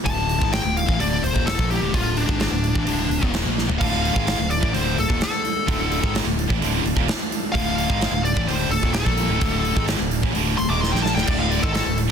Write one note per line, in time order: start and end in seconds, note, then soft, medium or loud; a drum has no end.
0.04 0.38 D1 loud
0.04 0.39 D2 medium
0.04 0.39 A2 loud
0.04 0.40 D3 medium
0.04 0.51 A5 loud
0.04 kick loud
0.04 open hi-hat medium
0.29 open hi-hat medium
0.39 0.63 G#1 loud
0.39 0.62 G#2 loud
0.39 0.62 D#3 medium
0.39 0.63 G#3 medium
0.39 kick loud
0.53 0.75 G5 loud
0.53 snare loud
0.53 open hi-hat medium
0.63 0.86 D1 medium
0.63 0.82 D2 medium
0.63 0.82 A2 medium
0.77 0.99 F5 loud
0.77 open hi-hat medium
0.87 0.98 A1 medium
0.87 0.97 A2 medium
0.87 0.98 E3 medium
0.87 kick loud
0.98 1.21 D1 loud
0.98 1.19 D2 medium
0.98 1.20 A2 loud
0.98 1.21 D3 loud
0.98 1.22 D5 loud
0.98 open hi-hat medium
1.20 1.34 D1 medium
1.20 1.32 D2 medium
1.20 1.32 A2 medium
1.20 1.46 C5 loud
1.20 open hi-hat medium
1.33 1.56 D#1 medium
1.33 1.56 D#2 medium
1.33 1.56 A#2 loud
1.33 1.56 D#3 loud
1.33 kick medium
1.47 1.69 A4 medium
1.47 snare loud
1.47 open hi-hat medium
1.57 1.80 A#1 medium
1.57 1.80 A#2 medium
1.57 1.80 F3 medium
1.57 1.80 A#3 loud
1.57 kick loud
1.71 1.92 G4 loud
1.71 open hi-hat medium
1.81 1.91 D1 medium
1.81 1.91 D2 medium
1.81 1.92 A2 loud
1.92 2.26 D1 medium
1.92 2.27 D2 medium
1.92 2.27 A2 loud
1.92 2.27 D3 loud
1.92 2.16 F4 loud
1.92 kick loud
1.92 open hi-hat medium
2.17 2.39 D4 medium
2.17 open hi-hat medium
2.27 2.50 G#1 loud
2.27 2.50 G#2 medium
2.27 2.50 D#3 medium
2.27 2.50 G#3 medium
2.27 kick loud
2.40 3.30 D4 loud
2.40 snare loud
2.40 open hi-hat medium
2.50 2.73 D1 medium
2.50 2.69 D2 medium
2.50 2.70 A2 medium
2.64 open hi-hat medium
2.73 2.86 A1 medium
2.73 2.83 A2 medium
2.73 2.84 E3 medium
2.73 kick loud
2.84 3.08 D1 loud
2.84 3.07 D2 medium
2.84 3.08 A2 medium
2.84 3.08 D3 loud
2.84 open hi-hat medium
3.09 3.20 D1 medium
3.09 3.19 D2 medium
3.09 3.20 A2 medium
3.09 open hi-hat medium
3.20 3.44 D#1 medium
3.20 3.41 D#2 medium
3.20 3.40 A#2 medium
3.20 3.43 D#3 loud
3.20 kick medium
3.34 snare loud
3.34 open hi-hat medium
3.41 3.67 A#1 medium
3.41 3.65 A#2 loud
3.41 3.66 F3 medium
3.41 3.67 A#3 loud
3.58 snare medium
3.66 3.79 D1 medium
3.66 3.74 D2 medium
3.66 3.76 A2 loud
3.66 floor tom loud
3.76 4.12 D2 medium
3.76 4.13 A2 medium
3.76 4.13 D3 loud
3.76 4.47 F5 loud
3.76 12.12 F5 medium
3.81 4.13 D1 medium
3.81 12.12 D4 medium
3.81 12.12 A4 medium
3.81 kick loud
3.81 open hi-hat medium
3.81 crash loud
4.05 open hi-hat medium
4.13 4.37 G#1 loud
4.13 4.36 G#2 medium
4.13 4.37 D#3 medium
4.13 4.37 G#3 loud
4.13 kick loud
4.27 snare loud
4.27 open hi-hat medium
4.37 4.60 D1 medium
4.37 4.56 D2 medium
4.37 4.56 A2 medium
4.51 4.73 D5 loud
4.51 open hi-hat medium
4.60 4.73 A1 medium
4.60 4.72 A2 medium
4.60 4.72 E3 loud
4.60 kick loud
4.72 4.96 D1 medium
4.72 4.95 D2 loud
4.72 4.96 A2 loud
4.72 4.96 D3 medium
4.72 4.96 C5 loud
4.72 open hi-hat medium
4.98 5.08 D1 medium
4.98 5.09 D2 medium
4.98 5.09 A2 medium
4.98 5.20 A4 loud
4.98 open hi-hat medium
5.09 5.20 D#1 medium
5.09 5.20 D#2 medium
5.09 5.20 A#2 loud
5.09 kick medium
5.21 6.12 A4 loud
5.21 snare loud
5.21 open hi-hat medium
5.45 open hi-hat medium
5.66 6.00 D1 loud
5.66 6.00 D2 medium
5.66 6.00 A2 medium
5.66 6.01 D3 loud
5.66 kick loud
5.66 open hi-hat medium
5.92 open hi-hat medium
6.00 6.24 G#1 medium
6.00 6.24 G#2 medium
6.00 6.24 D#3 loud
6.00 6.24 G#3 loud
6.00 kick loud
6.15 snare loud
6.15 open hi-hat medium
6.25 6.47 D1 medium
6.25 6.44 D2 medium
6.25 6.44 A2 medium
6.39 open hi-hat medium
6.47 6.60 A1 loud
6.47 6.59 A2 medium
6.47 6.59 E3 medium
6.47 kick loud
6.60 6.82 D1 loud
6.60 6.83 D2 medium
6.60 6.83 A2 medium
6.60 6.83 D3 medium
6.60 open hi-hat medium
6.83 6.94 D1 medium
6.83 6.95 D2 medium
6.83 6.96 A2 medium
6.83 open hi-hat medium
6.95 7.07 D#1 loud
6.95 7.06 D#2 medium
6.95 7.07 A#2 loud
6.95 kick loud
7.08 snare loud
7.08 open hi-hat medium
7.32 open hi-hat medium
7.52 7.87 D1 loud
7.52 7.88 D2 medium
7.52 7.89 A2 loud
7.52 7.89 D3 loud
7.52 8.21 F5 loud
7.52 kick loud
7.52 open hi-hat medium
7.78 open hi-hat medium
7.89 8.11 G#1 loud
7.89 8.12 G#2 medium
7.89 8.12 D#3 loud
7.89 8.12 G#3 loud
7.89 kick loud
8.02 snare loud
8.02 open hi-hat medium
8.11 8.33 D1 medium
8.11 8.31 D2 medium
8.11 8.32 A2 medium
8.24 8.47 D5 loud
8.24 open hi-hat medium
8.34 8.45 A1 loud
8.34 8.46 A2 medium
8.34 8.46 E3 medium
8.34 kick loud
8.45 8.68 D1 medium
8.45 8.70 D2 medium
8.45 8.70 A2 loud
8.45 8.71 D3 loud
8.45 8.70 C5 loud
8.45 open hi-hat medium
8.69 8.81 D1 medium
8.69 8.81 D2 medium
8.69 8.82 A2 medium
8.69 8.93 A4 loud
8.69 open hi-hat medium
8.81 9.04 D#1 loud
8.81 9.05 D#2 medium
8.81 9.05 A#2 medium
8.81 9.05 D#3 loud
8.81 kick medium
8.94 9.85 A4 medium
8.94 snare loud
8.94 open hi-hat medium
9.06 9.27 A#1 loud
9.06 9.28 A#2 loud
9.06 9.29 F3 loud
9.06 9.29 A#3 loud
9.06 kick loud
9.17 open hi-hat medium
9.28 9.39 D1 medium
9.28 9.40 D2 loud
9.28 9.40 A2 loud
9.41 9.74 D1 medium
9.41 9.75 D2 loud
9.41 9.76 A2 medium
9.41 9.76 D3 loud
9.41 kick loud
9.41 open hi-hat medium
9.65 open hi-hat medium
9.76 9.98 G#1 loud
9.76 9.98 G#2 medium
9.76 9.99 D#3 loud
9.76 9.99 G#3 medium
9.76 kick loud
9.88 snare loud
9.88 open hi-hat medium
10.00 10.21 D1 medium
10.00 10.19 D2 medium
10.00 10.19 A2 medium
10.11 open hi-hat medium
10.23 10.34 A1 medium
10.23 10.34 A2 medium
10.23 10.34 E3 loud
10.23 kick loud
10.34 10.57 D1 loud
10.34 10.57 D2 loud
10.34 10.57 A2 loud
10.34 10.58 D3 loud
10.34 open hi-hat medium
10.58 10.69 D1 medium
10.58 10.70 D2 medium
10.58 10.70 A2 medium
10.58 10.69 C6 loud
10.58 open hi-hat medium
10.70 10.91 D#1 loud
10.70 10.93 D#2 medium
10.70 10.92 A#2 medium
10.70 10.93 D#3 loud
10.70 10.81 D6 medium
10.81 10.92 C6 medium
10.81 snare medium
10.92 11.15 A#1 loud
10.92 11.16 A#2 medium
10.92 11.16 F3 loud
10.92 11.16 A#3 loud
10.92 11.02 G5 medium
10.92 snare medium
11.03 11.14 A5 loud
11.03 snare medium
11.15 11.27 D1 medium
11.15 11.28 D2 loud
11.15 11.28 A2 loud
11.15 11.27 G5 loud
11.15 snare loud
11.27 11.61 D1 medium
11.27 11.63 D2 loud
11.27 11.63 A2 loud
11.27 11.64 D3 medium
11.27 11.39 D5 loud
11.27 kick loud
11.27 crash loud
11.39 11.51 F5 medium
11.51 11.62 D5 loud
11.51 open hi-hat medium
11.63 11.85 G#1 loud
11.63 11.85 G#2 medium
11.63 11.86 D#3 medium
11.63 11.86 G#3 loud
11.63 11.72 A4 loud
11.63 kick loud
11.73 11.97 A4 loud
11.73 snare loud
11.73 open hi-hat medium
11.86 12.08 D1 medium
11.86 12.05 D2 medium
11.86 12.05 A2 medium
11.98 open hi-hat medium
12.08 12.12 A2 medium